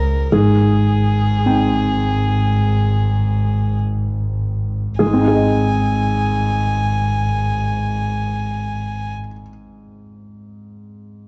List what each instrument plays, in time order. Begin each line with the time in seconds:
Already playing: double bass C#2, grand piano G#3 F4 A#4, violin A#4
0.32 double bass G#1, grand piano G#2 G#4, violin G#4
1.46 grand piano C4 D#4 G5
4.99 double bass G#1, grand piano G#2 G#4, violin G#5
5.07 grand piano G#3
5.13 grand piano C4
5.21 grand piano D#4
5.28 grand piano G#4
5.35 grand piano D#5